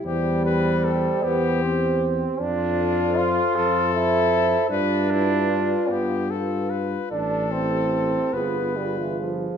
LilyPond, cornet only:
\new Staff \with { instrumentName = "Cornet" } { \time 6/8 \key c \major \tempo 4. = 50 g'8 b'8 a'8 g'4 r8 | f'4. a'4. | b'8 e'8 f'8 g'8 a'8 b'8 | a'4. b'4 r8 | }